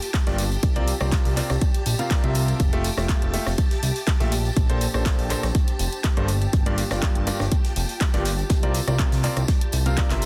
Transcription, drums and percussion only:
0.02 open hi-hat, tambourine
0.14 kick, snare, clap, closed hi-hat
0.27 snare, closed hi-hat
0.38 closed hi-hat, open hi-hat, tambourine
0.51 closed hi-hat, tambourine
0.63 kick, closed hi-hat, tambourine
0.76 closed hi-hat
0.87 closed hi-hat, open hi-hat, tambourine
1.00 cross-stick, tambourine
1.12 kick, snare, clap, closed hi-hat
1.25 open hi-hat
1.37 clap, closed hi-hat, open hi-hat, tambourine
1.49 cross-stick, snare, closed hi-hat, tambourine
1.61 kick, closed hi-hat, tambourine
1.74 closed hi-hat
1.86 closed hi-hat, open hi-hat, tambourine
1.99 closed hi-hat, tambourine
2.11 kick, snare, clap, closed hi-hat
2.24 closed hi-hat
2.35 closed hi-hat, open hi-hat, tambourine
2.48 closed hi-hat, tambourine
2.60 kick, closed hi-hat
2.73 closed hi-hat
2.84 closed hi-hat, open hi-hat, tambourine
2.97 cross-stick, snare, tambourine
3.09 kick, snare, clap, closed hi-hat
3.22 closed hi-hat
3.34 closed hi-hat, open hi-hat, tambourine
3.46 cross-stick, snare, tambourine
3.58 kick, closed hi-hat, tambourine
3.71 snare, closed hi-hat
3.83 closed hi-hat, open hi-hat, tambourine
3.96 open hi-hat, tambourine
4.07 kick, snare, clap, closed hi-hat
4.20 snare, closed hi-hat
4.32 closed hi-hat, open hi-hat, tambourine
4.45 closed hi-hat, tambourine
4.56 kick, closed hi-hat
4.70 closed hi-hat
4.81 closed hi-hat, open hi-hat, tambourine
4.94 cross-stick, tambourine
5.05 kick, snare, clap, closed hi-hat
5.19 open hi-hat
5.30 clap, closed hi-hat, open hi-hat, tambourine
5.43 cross-stick, snare, closed hi-hat, tambourine
5.55 kick, closed hi-hat
5.68 closed hi-hat
5.79 closed hi-hat, open hi-hat, tambourine
5.92 closed hi-hat, tambourine
6.04 kick, snare, clap, closed hi-hat
6.17 closed hi-hat
6.28 closed hi-hat, open hi-hat, tambourine
6.41 closed hi-hat, tambourine
6.53 kick, closed hi-hat
6.66 closed hi-hat
6.77 closed hi-hat, open hi-hat, tambourine
6.90 cross-stick, snare, tambourine
7.02 kick, snare, clap, closed hi-hat
7.15 closed hi-hat
7.27 closed hi-hat, open hi-hat, tambourine
7.39 cross-stick, snare, tambourine
7.52 kick, closed hi-hat
7.65 snare, closed hi-hat
7.76 closed hi-hat, open hi-hat, tambourine
7.89 open hi-hat, tambourine
8.00 kick, snare, clap, closed hi-hat
8.13 snare, closed hi-hat
8.25 snare, closed hi-hat, open hi-hat, tambourine
8.38 closed hi-hat, tambourine
8.50 kick, snare, closed hi-hat, tambourine
8.63 closed hi-hat
8.74 snare, closed hi-hat, open hi-hat, tambourine
8.88 cross-stick, closed hi-hat, tambourine
8.99 kick, clap, closed hi-hat
9.12 snare, closed hi-hat, open hi-hat
9.23 clap, open hi-hat, tambourine
9.36 cross-stick, closed hi-hat, tambourine
9.48 kick, snare, closed hi-hat
9.61 closed hi-hat
9.72 closed hi-hat, open hi-hat, tambourine
9.86 closed hi-hat, tambourine
9.97 kick, snare, clap, closed hi-hat
10.10 snare, clap, closed hi-hat
10.22 snare, closed hi-hat, open hi-hat

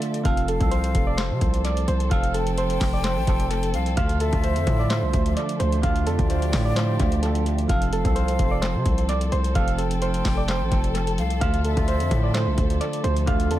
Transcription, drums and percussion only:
0.02 closed hi-hat
0.14 closed hi-hat
0.25 kick, closed hi-hat
0.37 closed hi-hat
0.48 closed hi-hat
0.61 kick, closed hi-hat
0.71 closed hi-hat
0.84 closed hi-hat
0.95 kick, closed hi-hat
1.18 snare, clap, closed hi-hat
1.41 kick, closed hi-hat
1.54 closed hi-hat
1.65 closed hi-hat
1.77 closed hi-hat
1.88 closed hi-hat
2.00 closed hi-hat
2.11 kick, closed hi-hat
2.23 closed hi-hat
2.34 closed hi-hat
2.47 closed hi-hat
2.58 closed hi-hat
2.70 closed hi-hat
2.81 kick, snare, clap, open hi-hat
3.04 snare, clap, closed hi-hat
3.27 kick, closed hi-hat
3.40 closed hi-hat
3.51 closed hi-hat
3.63 closed hi-hat
3.74 closed hi-hat
3.86 closed hi-hat
3.97 kick, closed hi-hat
4.09 closed hi-hat
4.20 closed hi-hat
4.33 kick, closed hi-hat
4.44 closed hi-hat
4.56 closed hi-hat
4.67 kick, closed hi-hat
4.90 snare, clap, closed hi-hat
5.13 kick, closed hi-hat
5.26 closed hi-hat
5.37 closed hi-hat
5.49 closed hi-hat
5.60 closed hi-hat
5.72 closed hi-hat
5.83 kick, closed hi-hat
5.96 closed hi-hat
6.07 closed hi-hat
6.19 kick, closed hi-hat
6.30 closed hi-hat
6.42 closed hi-hat
6.53 kick, snare, clap, open hi-hat
6.76 snare, clap, closed hi-hat
7.00 kick, closed hi-hat
7.12 closed hi-hat
7.23 closed hi-hat
7.35 closed hi-hat
7.46 closed hi-hat
7.58 closed hi-hat
7.69 kick, closed hi-hat
7.82 closed hi-hat
7.93 closed hi-hat
8.05 kick, closed hi-hat
8.16 closed hi-hat
8.28 closed hi-hat
8.39 kick, closed hi-hat
8.62 snare, clap, closed hi-hat
8.86 kick, closed hi-hat
8.98 closed hi-hat
9.09 closed hi-hat
9.21 closed hi-hat
9.32 closed hi-hat
9.44 closed hi-hat
9.55 kick, closed hi-hat
9.68 closed hi-hat
9.78 closed hi-hat
9.91 closed hi-hat
10.02 closed hi-hat
10.14 closed hi-hat
10.25 kick, snare, clap, open hi-hat
10.48 snare, clap, closed hi-hat
10.72 kick, closed hi-hat
10.84 closed hi-hat
10.95 closed hi-hat
11.07 closed hi-hat
11.18 closed hi-hat
11.30 closed hi-hat
11.41 kick, closed hi-hat
11.54 closed hi-hat
11.65 closed hi-hat
11.77 kick, closed hi-hat
11.88 closed hi-hat
12.00 closed hi-hat
12.11 kick, closed hi-hat
12.34 snare, clap, closed hi-hat
12.58 kick, closed hi-hat
12.70 closed hi-hat
12.81 closed hi-hat
12.93 closed hi-hat
13.04 closed hi-hat
13.17 closed hi-hat
13.27 kick, closed hi-hat
13.40 closed hi-hat
13.51 closed hi-hat

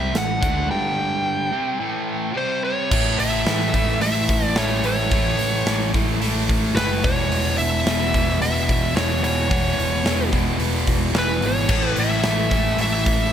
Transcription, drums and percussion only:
0.15 snare, closed hi-hat
0.43 kick, closed hi-hat
2.92 kick, crash
3.19 open hi-hat
3.46 snare, open hi-hat
3.60 snare
3.74 kick, open hi-hat
4.01 open hi-hat
4.29 kick, open hi-hat
4.56 snare, open hi-hat
4.84 open hi-hat
5.11 kick, open hi-hat
5.39 open hi-hat
5.67 snare, open hi-hat
5.81 snare
5.94 kick, open hi-hat
6.22 open hi-hat
6.49 kick, open hi-hat
6.77 snare, open hi-hat
7.04 kick, open hi-hat
7.32 open hi-hat
7.59 open hi-hat
7.87 snare, open hi-hat
8.14 kick, open hi-hat
8.42 open hi-hat
8.69 kick, open hi-hat
8.97 snare, open hi-hat
9.24 open hi-hat
9.51 kick, open hi-hat
9.79 open hi-hat
10.06 snare, open hi-hat
10.33 kick, open hi-hat
10.60 open hi-hat
10.87 kick, open hi-hat
11.15 snare, open hi-hat
11.42 open hi-hat
11.69 kick, crash
11.96 open hi-hat
12.23 snare, open hi-hat
12.51 kick, open hi-hat
12.78 open hi-hat
13.06 kick, open hi-hat

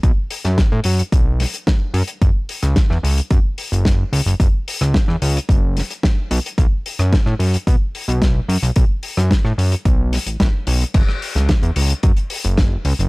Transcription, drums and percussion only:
0.03 kick, closed hi-hat
0.31 open hi-hat
0.45 snare, closed hi-hat
0.58 kick, snare, closed hi-hat
0.84 open hi-hat
0.99 closed hi-hat
1.12 kick, closed hi-hat
1.40 snare, open hi-hat
1.54 closed hi-hat
1.67 kick, snare, closed hi-hat
1.94 open hi-hat
2.07 closed hi-hat
2.22 kick, closed hi-hat
2.49 open hi-hat
2.63 cross-stick, closed hi-hat
2.76 kick, snare, closed hi-hat
2.91 cross-stick
3.05 open hi-hat
3.18 closed hi-hat
3.30 kick, closed hi-hat
3.58 open hi-hat
3.73 closed hi-hat
3.85 kick, snare, closed hi-hat
4.13 open hi-hat
4.27 closed hi-hat
4.40 kick, closed hi-hat
4.68 open hi-hat
4.81 cross-stick, closed hi-hat
4.94 kick, snare, closed hi-hat
5.09 cross-stick
5.22 open hi-hat
5.37 closed hi-hat
5.49 kick, closed hi-hat
5.77 snare, open hi-hat
5.90 closed hi-hat
6.03 kick, snare, closed hi-hat
6.31 open hi-hat
6.46 closed hi-hat
6.58 kick, closed hi-hat
6.86 open hi-hat
6.99 cross-stick, closed hi-hat
7.13 kick, snare, closed hi-hat
7.26 cross-stick
7.40 open hi-hat
7.54 closed hi-hat
7.67 kick, closed hi-hat
7.95 open hi-hat
8.09 closed hi-hat
8.22 kick, snare, closed hi-hat
8.49 open hi-hat
8.63 closed hi-hat
8.76 kick, closed hi-hat
9.03 open hi-hat
9.17 cross-stick, snare, closed hi-hat
9.31 kick, snare, closed hi-hat
9.45 cross-stick
9.59 open hi-hat
9.72 closed hi-hat
9.85 kick, closed hi-hat
10.13 snare, open hi-hat
10.27 closed hi-hat
10.40 kick, snare, closed hi-hat
10.67 open hi-hat
10.81 closed hi-hat
10.94 kick, closed hi-hat, crash
11.09 cross-stick
11.22 open hi-hat
11.36 snare, closed hi-hat
11.49 kick, snare, closed hi-hat
11.63 closed hi-hat
11.76 open hi-hat
11.90 closed hi-hat
12.03 kick, closed hi-hat
12.17 closed hi-hat
12.30 open hi-hat
12.44 closed hi-hat
12.57 kick, cross-stick, snare, closed hi-hat
12.85 open hi-hat
13.00 closed hi-hat

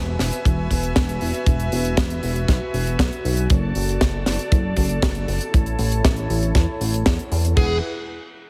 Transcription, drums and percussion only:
0.19 snare, open hi-hat
0.33 closed hi-hat
0.45 kick, closed hi-hat
0.71 kick, open hi-hat
0.83 closed hi-hat
0.96 kick, snare, closed hi-hat
1.09 closed hi-hat
1.21 open hi-hat
1.34 closed hi-hat
1.46 kick, closed hi-hat
1.60 closed hi-hat
1.72 open hi-hat
1.85 closed hi-hat
1.97 kick, snare, closed hi-hat
2.10 closed hi-hat
2.23 open hi-hat
2.36 closed hi-hat
2.48 kick, snare, closed hi-hat
2.74 open hi-hat
2.87 closed hi-hat
2.99 kick, snare, closed hi-hat
3.13 closed hi-hat
3.25 open hi-hat
3.37 closed hi-hat
3.50 kick, closed hi-hat
3.75 open hi-hat
3.89 closed hi-hat
4.01 kick, snare, closed hi-hat
4.26 snare, open hi-hat
4.39 closed hi-hat
4.52 kick, closed hi-hat
4.76 kick, open hi-hat
4.89 closed hi-hat
5.02 kick, snare, closed hi-hat
5.15 closed hi-hat
5.28 open hi-hat
5.41 closed hi-hat
5.54 kick, closed hi-hat
5.66 closed hi-hat
5.79 open hi-hat
5.92 closed hi-hat
6.05 kick, snare, closed hi-hat
6.16 closed hi-hat
6.30 open hi-hat
6.43 closed hi-hat
6.55 kick, snare, closed hi-hat
6.81 open hi-hat
6.94 closed hi-hat
7.06 kick, snare, closed hi-hat
7.19 closed hi-hat
7.32 open hi-hat
7.45 closed hi-hat
7.57 kick, crash

